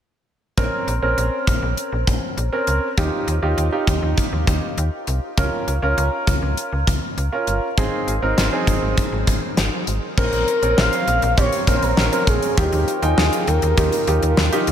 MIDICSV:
0, 0, Header, 1, 5, 480
1, 0, Start_track
1, 0, Tempo, 600000
1, 460, Time_signature, 4, 2, 24, 8
1, 11774, End_track
2, 0, Start_track
2, 0, Title_t, "Analog synth lead"
2, 0, Program_c, 0, 81
2, 8140, Note_on_c, 0, 70, 106
2, 8588, Note_off_c, 0, 70, 0
2, 8621, Note_on_c, 0, 77, 117
2, 9068, Note_off_c, 0, 77, 0
2, 9101, Note_on_c, 0, 73, 107
2, 9383, Note_off_c, 0, 73, 0
2, 9404, Note_on_c, 0, 72, 71
2, 9462, Note_on_c, 0, 70, 95
2, 9474, Note_off_c, 0, 72, 0
2, 9821, Note_on_c, 0, 68, 94
2, 9833, Note_off_c, 0, 70, 0
2, 10062, Note_on_c, 0, 67, 100
2, 10074, Note_off_c, 0, 68, 0
2, 10422, Note_on_c, 0, 68, 95
2, 10434, Note_off_c, 0, 67, 0
2, 10782, Note_on_c, 0, 70, 96
2, 10794, Note_off_c, 0, 68, 0
2, 11741, Note_off_c, 0, 70, 0
2, 11774, End_track
3, 0, Start_track
3, 0, Title_t, "Grand piano"
3, 0, Program_c, 1, 0
3, 460, Note_on_c, 1, 60, 81
3, 460, Note_on_c, 1, 61, 75
3, 460, Note_on_c, 1, 70, 91
3, 736, Note_off_c, 1, 60, 0
3, 736, Note_off_c, 1, 61, 0
3, 736, Note_off_c, 1, 70, 0
3, 820, Note_on_c, 1, 60, 82
3, 820, Note_on_c, 1, 61, 77
3, 820, Note_on_c, 1, 70, 87
3, 1557, Note_off_c, 1, 60, 0
3, 1557, Note_off_c, 1, 61, 0
3, 1557, Note_off_c, 1, 70, 0
3, 2020, Note_on_c, 1, 60, 79
3, 2020, Note_on_c, 1, 61, 70
3, 2020, Note_on_c, 1, 70, 89
3, 2296, Note_off_c, 1, 61, 0
3, 2296, Note_off_c, 1, 70, 0
3, 2297, Note_off_c, 1, 60, 0
3, 2381, Note_on_c, 1, 63, 83
3, 2381, Note_on_c, 1, 65, 75
3, 2381, Note_on_c, 1, 67, 89
3, 2657, Note_off_c, 1, 63, 0
3, 2657, Note_off_c, 1, 65, 0
3, 2657, Note_off_c, 1, 67, 0
3, 2740, Note_on_c, 1, 63, 83
3, 2740, Note_on_c, 1, 65, 76
3, 2740, Note_on_c, 1, 67, 92
3, 2924, Note_off_c, 1, 63, 0
3, 2924, Note_off_c, 1, 65, 0
3, 2924, Note_off_c, 1, 67, 0
3, 2980, Note_on_c, 1, 63, 79
3, 2980, Note_on_c, 1, 65, 70
3, 2980, Note_on_c, 1, 67, 86
3, 3717, Note_off_c, 1, 63, 0
3, 3717, Note_off_c, 1, 65, 0
3, 3717, Note_off_c, 1, 67, 0
3, 4300, Note_on_c, 1, 61, 83
3, 4300, Note_on_c, 1, 65, 75
3, 4300, Note_on_c, 1, 70, 91
3, 4576, Note_off_c, 1, 61, 0
3, 4576, Note_off_c, 1, 65, 0
3, 4576, Note_off_c, 1, 70, 0
3, 4660, Note_on_c, 1, 61, 84
3, 4660, Note_on_c, 1, 65, 75
3, 4660, Note_on_c, 1, 70, 90
3, 5397, Note_off_c, 1, 61, 0
3, 5397, Note_off_c, 1, 65, 0
3, 5397, Note_off_c, 1, 70, 0
3, 5860, Note_on_c, 1, 61, 79
3, 5860, Note_on_c, 1, 65, 72
3, 5860, Note_on_c, 1, 70, 86
3, 6136, Note_off_c, 1, 61, 0
3, 6136, Note_off_c, 1, 65, 0
3, 6136, Note_off_c, 1, 70, 0
3, 6220, Note_on_c, 1, 60, 80
3, 6220, Note_on_c, 1, 63, 74
3, 6220, Note_on_c, 1, 68, 91
3, 6496, Note_off_c, 1, 60, 0
3, 6496, Note_off_c, 1, 63, 0
3, 6496, Note_off_c, 1, 68, 0
3, 6579, Note_on_c, 1, 60, 83
3, 6580, Note_on_c, 1, 63, 75
3, 6580, Note_on_c, 1, 70, 91
3, 6764, Note_off_c, 1, 60, 0
3, 6764, Note_off_c, 1, 63, 0
3, 6764, Note_off_c, 1, 70, 0
3, 6820, Note_on_c, 1, 60, 76
3, 6820, Note_on_c, 1, 63, 71
3, 6820, Note_on_c, 1, 68, 82
3, 7557, Note_off_c, 1, 60, 0
3, 7557, Note_off_c, 1, 63, 0
3, 7557, Note_off_c, 1, 68, 0
3, 8140, Note_on_c, 1, 60, 76
3, 8140, Note_on_c, 1, 61, 67
3, 8140, Note_on_c, 1, 70, 78
3, 8416, Note_off_c, 1, 60, 0
3, 8416, Note_off_c, 1, 61, 0
3, 8416, Note_off_c, 1, 70, 0
3, 8499, Note_on_c, 1, 60, 76
3, 8499, Note_on_c, 1, 61, 68
3, 8499, Note_on_c, 1, 70, 79
3, 8960, Note_off_c, 1, 60, 0
3, 8960, Note_off_c, 1, 61, 0
3, 8960, Note_off_c, 1, 70, 0
3, 9100, Note_on_c, 1, 60, 71
3, 9100, Note_on_c, 1, 61, 63
3, 9100, Note_on_c, 1, 67, 78
3, 9284, Note_off_c, 1, 60, 0
3, 9284, Note_off_c, 1, 61, 0
3, 9284, Note_off_c, 1, 67, 0
3, 9340, Note_on_c, 1, 60, 73
3, 9340, Note_on_c, 1, 61, 68
3, 9340, Note_on_c, 1, 70, 78
3, 9616, Note_off_c, 1, 60, 0
3, 9616, Note_off_c, 1, 61, 0
3, 9616, Note_off_c, 1, 70, 0
3, 9699, Note_on_c, 1, 61, 67
3, 9700, Note_on_c, 1, 60, 71
3, 9700, Note_on_c, 1, 70, 81
3, 9976, Note_off_c, 1, 60, 0
3, 9976, Note_off_c, 1, 61, 0
3, 9976, Note_off_c, 1, 70, 0
3, 10060, Note_on_c, 1, 63, 73
3, 10060, Note_on_c, 1, 65, 65
3, 10060, Note_on_c, 1, 67, 85
3, 10336, Note_off_c, 1, 63, 0
3, 10336, Note_off_c, 1, 65, 0
3, 10336, Note_off_c, 1, 67, 0
3, 10420, Note_on_c, 1, 63, 74
3, 10420, Note_on_c, 1, 65, 68
3, 10420, Note_on_c, 1, 79, 79
3, 10880, Note_off_c, 1, 63, 0
3, 10880, Note_off_c, 1, 65, 0
3, 10881, Note_off_c, 1, 79, 0
3, 11019, Note_on_c, 1, 63, 72
3, 11019, Note_on_c, 1, 65, 66
3, 11019, Note_on_c, 1, 67, 75
3, 11204, Note_off_c, 1, 63, 0
3, 11204, Note_off_c, 1, 65, 0
3, 11204, Note_off_c, 1, 67, 0
3, 11259, Note_on_c, 1, 63, 70
3, 11259, Note_on_c, 1, 65, 65
3, 11259, Note_on_c, 1, 67, 79
3, 11536, Note_off_c, 1, 63, 0
3, 11536, Note_off_c, 1, 65, 0
3, 11536, Note_off_c, 1, 67, 0
3, 11620, Note_on_c, 1, 63, 86
3, 11620, Note_on_c, 1, 65, 79
3, 11620, Note_on_c, 1, 67, 95
3, 11774, Note_off_c, 1, 63, 0
3, 11774, Note_off_c, 1, 65, 0
3, 11774, Note_off_c, 1, 67, 0
3, 11774, End_track
4, 0, Start_track
4, 0, Title_t, "FM bass"
4, 0, Program_c, 2, 39
4, 460, Note_on_c, 2, 34, 101
4, 558, Note_off_c, 2, 34, 0
4, 700, Note_on_c, 2, 34, 99
4, 798, Note_off_c, 2, 34, 0
4, 820, Note_on_c, 2, 34, 93
4, 918, Note_off_c, 2, 34, 0
4, 940, Note_on_c, 2, 34, 101
4, 1038, Note_off_c, 2, 34, 0
4, 1179, Note_on_c, 2, 34, 98
4, 1277, Note_off_c, 2, 34, 0
4, 1300, Note_on_c, 2, 34, 98
4, 1398, Note_off_c, 2, 34, 0
4, 1540, Note_on_c, 2, 34, 92
4, 1638, Note_off_c, 2, 34, 0
4, 1659, Note_on_c, 2, 34, 93
4, 1757, Note_off_c, 2, 34, 0
4, 1900, Note_on_c, 2, 34, 97
4, 1997, Note_off_c, 2, 34, 0
4, 2140, Note_on_c, 2, 37, 92
4, 2238, Note_off_c, 2, 37, 0
4, 2381, Note_on_c, 2, 39, 109
4, 2478, Note_off_c, 2, 39, 0
4, 2620, Note_on_c, 2, 39, 99
4, 2717, Note_off_c, 2, 39, 0
4, 2740, Note_on_c, 2, 39, 94
4, 2837, Note_off_c, 2, 39, 0
4, 2860, Note_on_c, 2, 39, 100
4, 2958, Note_off_c, 2, 39, 0
4, 3099, Note_on_c, 2, 39, 92
4, 3197, Note_off_c, 2, 39, 0
4, 3220, Note_on_c, 2, 39, 93
4, 3318, Note_off_c, 2, 39, 0
4, 3460, Note_on_c, 2, 39, 88
4, 3558, Note_off_c, 2, 39, 0
4, 3579, Note_on_c, 2, 39, 97
4, 3677, Note_off_c, 2, 39, 0
4, 3820, Note_on_c, 2, 39, 101
4, 3918, Note_off_c, 2, 39, 0
4, 4060, Note_on_c, 2, 36, 93
4, 4158, Note_off_c, 2, 36, 0
4, 4301, Note_on_c, 2, 37, 101
4, 4398, Note_off_c, 2, 37, 0
4, 4540, Note_on_c, 2, 37, 89
4, 4638, Note_off_c, 2, 37, 0
4, 4660, Note_on_c, 2, 37, 93
4, 4757, Note_off_c, 2, 37, 0
4, 4780, Note_on_c, 2, 37, 106
4, 4877, Note_off_c, 2, 37, 0
4, 5019, Note_on_c, 2, 37, 97
4, 5117, Note_off_c, 2, 37, 0
4, 5139, Note_on_c, 2, 37, 86
4, 5237, Note_off_c, 2, 37, 0
4, 5380, Note_on_c, 2, 37, 86
4, 5478, Note_off_c, 2, 37, 0
4, 5499, Note_on_c, 2, 37, 93
4, 5597, Note_off_c, 2, 37, 0
4, 5740, Note_on_c, 2, 37, 91
4, 5838, Note_off_c, 2, 37, 0
4, 5980, Note_on_c, 2, 31, 87
4, 6078, Note_off_c, 2, 31, 0
4, 6220, Note_on_c, 2, 32, 104
4, 6318, Note_off_c, 2, 32, 0
4, 6460, Note_on_c, 2, 32, 91
4, 6557, Note_off_c, 2, 32, 0
4, 6580, Note_on_c, 2, 32, 90
4, 6677, Note_off_c, 2, 32, 0
4, 6700, Note_on_c, 2, 32, 103
4, 6797, Note_off_c, 2, 32, 0
4, 6939, Note_on_c, 2, 32, 93
4, 7037, Note_off_c, 2, 32, 0
4, 7060, Note_on_c, 2, 32, 90
4, 7158, Note_off_c, 2, 32, 0
4, 7300, Note_on_c, 2, 32, 98
4, 7398, Note_off_c, 2, 32, 0
4, 7419, Note_on_c, 2, 32, 93
4, 7517, Note_off_c, 2, 32, 0
4, 7660, Note_on_c, 2, 32, 96
4, 7758, Note_off_c, 2, 32, 0
4, 7900, Note_on_c, 2, 32, 86
4, 7998, Note_off_c, 2, 32, 0
4, 8140, Note_on_c, 2, 34, 105
4, 8238, Note_off_c, 2, 34, 0
4, 8261, Note_on_c, 2, 34, 86
4, 8358, Note_off_c, 2, 34, 0
4, 8500, Note_on_c, 2, 34, 93
4, 8598, Note_off_c, 2, 34, 0
4, 8620, Note_on_c, 2, 34, 100
4, 8718, Note_off_c, 2, 34, 0
4, 8860, Note_on_c, 2, 34, 97
4, 8958, Note_off_c, 2, 34, 0
4, 8980, Note_on_c, 2, 34, 106
4, 9078, Note_off_c, 2, 34, 0
4, 9101, Note_on_c, 2, 34, 107
4, 9198, Note_off_c, 2, 34, 0
4, 9339, Note_on_c, 2, 34, 99
4, 9437, Note_off_c, 2, 34, 0
4, 9460, Note_on_c, 2, 34, 92
4, 9558, Note_off_c, 2, 34, 0
4, 9580, Note_on_c, 2, 34, 105
4, 9677, Note_off_c, 2, 34, 0
4, 9818, Note_on_c, 2, 34, 100
4, 9916, Note_off_c, 2, 34, 0
4, 10060, Note_on_c, 2, 39, 101
4, 10158, Note_off_c, 2, 39, 0
4, 10181, Note_on_c, 2, 39, 93
4, 10278, Note_off_c, 2, 39, 0
4, 10420, Note_on_c, 2, 39, 100
4, 10517, Note_off_c, 2, 39, 0
4, 10540, Note_on_c, 2, 39, 104
4, 10638, Note_off_c, 2, 39, 0
4, 10780, Note_on_c, 2, 39, 107
4, 10878, Note_off_c, 2, 39, 0
4, 10901, Note_on_c, 2, 39, 100
4, 10998, Note_off_c, 2, 39, 0
4, 11020, Note_on_c, 2, 39, 100
4, 11118, Note_off_c, 2, 39, 0
4, 11260, Note_on_c, 2, 39, 104
4, 11358, Note_off_c, 2, 39, 0
4, 11380, Note_on_c, 2, 39, 95
4, 11478, Note_off_c, 2, 39, 0
4, 11500, Note_on_c, 2, 39, 97
4, 11598, Note_off_c, 2, 39, 0
4, 11740, Note_on_c, 2, 39, 96
4, 11774, Note_off_c, 2, 39, 0
4, 11774, End_track
5, 0, Start_track
5, 0, Title_t, "Drums"
5, 460, Note_on_c, 9, 42, 60
5, 461, Note_on_c, 9, 36, 108
5, 540, Note_off_c, 9, 42, 0
5, 541, Note_off_c, 9, 36, 0
5, 703, Note_on_c, 9, 42, 62
5, 783, Note_off_c, 9, 42, 0
5, 943, Note_on_c, 9, 42, 60
5, 1023, Note_off_c, 9, 42, 0
5, 1179, Note_on_c, 9, 36, 81
5, 1181, Note_on_c, 9, 42, 66
5, 1259, Note_off_c, 9, 36, 0
5, 1261, Note_off_c, 9, 42, 0
5, 1420, Note_on_c, 9, 42, 66
5, 1500, Note_off_c, 9, 42, 0
5, 1659, Note_on_c, 9, 36, 81
5, 1660, Note_on_c, 9, 42, 78
5, 1739, Note_off_c, 9, 36, 0
5, 1740, Note_off_c, 9, 42, 0
5, 1901, Note_on_c, 9, 42, 63
5, 1981, Note_off_c, 9, 42, 0
5, 2138, Note_on_c, 9, 42, 77
5, 2218, Note_off_c, 9, 42, 0
5, 2380, Note_on_c, 9, 42, 61
5, 2381, Note_on_c, 9, 36, 108
5, 2460, Note_off_c, 9, 42, 0
5, 2461, Note_off_c, 9, 36, 0
5, 2622, Note_on_c, 9, 42, 64
5, 2702, Note_off_c, 9, 42, 0
5, 2862, Note_on_c, 9, 42, 60
5, 2942, Note_off_c, 9, 42, 0
5, 3099, Note_on_c, 9, 36, 85
5, 3101, Note_on_c, 9, 42, 65
5, 3179, Note_off_c, 9, 36, 0
5, 3181, Note_off_c, 9, 42, 0
5, 3340, Note_on_c, 9, 42, 68
5, 3341, Note_on_c, 9, 36, 90
5, 3420, Note_off_c, 9, 42, 0
5, 3421, Note_off_c, 9, 36, 0
5, 3579, Note_on_c, 9, 36, 85
5, 3580, Note_on_c, 9, 42, 77
5, 3659, Note_off_c, 9, 36, 0
5, 3660, Note_off_c, 9, 42, 0
5, 3821, Note_on_c, 9, 42, 63
5, 3901, Note_off_c, 9, 42, 0
5, 4058, Note_on_c, 9, 42, 79
5, 4138, Note_off_c, 9, 42, 0
5, 4300, Note_on_c, 9, 36, 104
5, 4300, Note_on_c, 9, 42, 60
5, 4380, Note_off_c, 9, 36, 0
5, 4380, Note_off_c, 9, 42, 0
5, 4542, Note_on_c, 9, 42, 66
5, 4622, Note_off_c, 9, 42, 0
5, 4782, Note_on_c, 9, 42, 63
5, 4862, Note_off_c, 9, 42, 0
5, 5019, Note_on_c, 9, 36, 86
5, 5021, Note_on_c, 9, 42, 65
5, 5099, Note_off_c, 9, 36, 0
5, 5101, Note_off_c, 9, 42, 0
5, 5260, Note_on_c, 9, 42, 69
5, 5340, Note_off_c, 9, 42, 0
5, 5499, Note_on_c, 9, 36, 86
5, 5500, Note_on_c, 9, 42, 80
5, 5579, Note_off_c, 9, 36, 0
5, 5580, Note_off_c, 9, 42, 0
5, 5742, Note_on_c, 9, 42, 66
5, 5822, Note_off_c, 9, 42, 0
5, 5979, Note_on_c, 9, 42, 76
5, 6059, Note_off_c, 9, 42, 0
5, 6220, Note_on_c, 9, 42, 61
5, 6221, Note_on_c, 9, 36, 108
5, 6300, Note_off_c, 9, 42, 0
5, 6301, Note_off_c, 9, 36, 0
5, 6463, Note_on_c, 9, 42, 66
5, 6543, Note_off_c, 9, 42, 0
5, 6702, Note_on_c, 9, 38, 113
5, 6702, Note_on_c, 9, 42, 62
5, 6782, Note_off_c, 9, 38, 0
5, 6782, Note_off_c, 9, 42, 0
5, 6939, Note_on_c, 9, 36, 83
5, 6941, Note_on_c, 9, 42, 67
5, 7019, Note_off_c, 9, 36, 0
5, 7021, Note_off_c, 9, 42, 0
5, 7180, Note_on_c, 9, 42, 68
5, 7181, Note_on_c, 9, 36, 92
5, 7260, Note_off_c, 9, 42, 0
5, 7261, Note_off_c, 9, 36, 0
5, 7419, Note_on_c, 9, 36, 83
5, 7420, Note_on_c, 9, 42, 77
5, 7499, Note_off_c, 9, 36, 0
5, 7500, Note_off_c, 9, 42, 0
5, 7659, Note_on_c, 9, 38, 107
5, 7661, Note_on_c, 9, 42, 63
5, 7739, Note_off_c, 9, 38, 0
5, 7741, Note_off_c, 9, 42, 0
5, 7898, Note_on_c, 9, 42, 76
5, 7978, Note_off_c, 9, 42, 0
5, 8140, Note_on_c, 9, 36, 114
5, 8140, Note_on_c, 9, 49, 86
5, 8220, Note_off_c, 9, 36, 0
5, 8220, Note_off_c, 9, 49, 0
5, 8261, Note_on_c, 9, 42, 50
5, 8341, Note_off_c, 9, 42, 0
5, 8383, Note_on_c, 9, 42, 65
5, 8463, Note_off_c, 9, 42, 0
5, 8501, Note_on_c, 9, 42, 58
5, 8581, Note_off_c, 9, 42, 0
5, 8623, Note_on_c, 9, 38, 113
5, 8703, Note_off_c, 9, 38, 0
5, 8742, Note_on_c, 9, 42, 52
5, 8822, Note_off_c, 9, 42, 0
5, 8860, Note_on_c, 9, 42, 70
5, 8940, Note_off_c, 9, 42, 0
5, 8978, Note_on_c, 9, 42, 55
5, 9058, Note_off_c, 9, 42, 0
5, 9100, Note_on_c, 9, 42, 69
5, 9101, Note_on_c, 9, 36, 91
5, 9180, Note_off_c, 9, 42, 0
5, 9181, Note_off_c, 9, 36, 0
5, 9220, Note_on_c, 9, 42, 56
5, 9300, Note_off_c, 9, 42, 0
5, 9339, Note_on_c, 9, 36, 88
5, 9340, Note_on_c, 9, 42, 80
5, 9419, Note_off_c, 9, 36, 0
5, 9420, Note_off_c, 9, 42, 0
5, 9460, Note_on_c, 9, 42, 52
5, 9540, Note_off_c, 9, 42, 0
5, 9579, Note_on_c, 9, 38, 102
5, 9659, Note_off_c, 9, 38, 0
5, 9701, Note_on_c, 9, 42, 57
5, 9781, Note_off_c, 9, 42, 0
5, 9818, Note_on_c, 9, 36, 93
5, 9818, Note_on_c, 9, 42, 78
5, 9898, Note_off_c, 9, 36, 0
5, 9898, Note_off_c, 9, 42, 0
5, 9940, Note_on_c, 9, 42, 52
5, 10020, Note_off_c, 9, 42, 0
5, 10060, Note_on_c, 9, 36, 110
5, 10060, Note_on_c, 9, 42, 63
5, 10140, Note_off_c, 9, 36, 0
5, 10140, Note_off_c, 9, 42, 0
5, 10180, Note_on_c, 9, 42, 52
5, 10260, Note_off_c, 9, 42, 0
5, 10302, Note_on_c, 9, 42, 67
5, 10382, Note_off_c, 9, 42, 0
5, 10421, Note_on_c, 9, 42, 58
5, 10501, Note_off_c, 9, 42, 0
5, 10542, Note_on_c, 9, 38, 110
5, 10622, Note_off_c, 9, 38, 0
5, 10661, Note_on_c, 9, 42, 53
5, 10741, Note_off_c, 9, 42, 0
5, 10780, Note_on_c, 9, 42, 71
5, 10860, Note_off_c, 9, 42, 0
5, 10898, Note_on_c, 9, 42, 53
5, 10978, Note_off_c, 9, 42, 0
5, 11020, Note_on_c, 9, 42, 68
5, 11021, Note_on_c, 9, 36, 92
5, 11100, Note_off_c, 9, 42, 0
5, 11101, Note_off_c, 9, 36, 0
5, 11140, Note_on_c, 9, 42, 57
5, 11220, Note_off_c, 9, 42, 0
5, 11260, Note_on_c, 9, 42, 82
5, 11340, Note_off_c, 9, 42, 0
5, 11380, Note_on_c, 9, 42, 56
5, 11460, Note_off_c, 9, 42, 0
5, 11499, Note_on_c, 9, 38, 104
5, 11579, Note_off_c, 9, 38, 0
5, 11621, Note_on_c, 9, 42, 56
5, 11701, Note_off_c, 9, 42, 0
5, 11739, Note_on_c, 9, 42, 80
5, 11774, Note_off_c, 9, 42, 0
5, 11774, End_track
0, 0, End_of_file